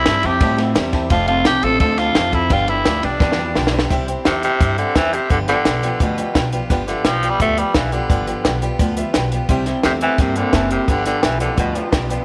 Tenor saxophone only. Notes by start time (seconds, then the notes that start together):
Already playing: E4
0.26 G4
1.12 F4
1.28 F4
1.46 G4
1.64 A4
1.81 A4
1.99 F4
2.34 E4
2.52 F4
2.69 E4
3.04 D4
4.26 C3
4.44 C3
4.78 D3
4.96 E3
5.14 C3
5.31 D3
5.49 D3
6.02 B2
6.88 D3
7.05 F3
7.30 G3
7.42 A3
7.59 G3
7.75 E3
7.93 D3
9.85 C3
10.02 E3
10.21 C3
10.37 D3
10.54 E3
10.72 C3
10.89 D3
11.07 D3
11.23 E3
11.40 D3
11.59 B2